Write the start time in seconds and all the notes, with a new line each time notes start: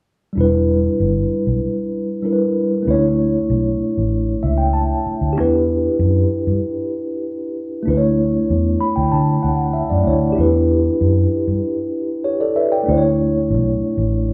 0.33 G3 D4
0.37 E1 E4 B4
1.00 G1
1.47 B1
2.22 G3 D4 E4 A#4
2.33 B4
2.83 A3 C#4
2.87 D2 E4 C#5
2.92 D4
3.50 B1
3.97 A1
4.43 C#2 E5
4.58 G5
4.73 A5
5.06 muted fingered electric bass stroke
5.21 D2
5.33 D4 G4
5.37 E2 E4 B4
5.99 F#2
6.47 G2
7.83 A3 D4
7.87 D2 E4 B4
7.97 C#5
8.50 E2
8.81 B5
8.96 D2 G5
9.12 D3 A5
9.43 D2 F#5
9.73 E5
9.90 F#2 D5
10.04 D2 A3 D4 E4 C#5
10.32 D4 G4
10.38 E2 E4 B4
11.01 F#2
11.48 G2
12.24 G4 C#5
12.41 A4 D5
12.56 B4 E5
12.72 D5 G5
12.83 A3 D4
12.88 D2 E4 C5
12.98 C#5
13.50 B1
13.97 A1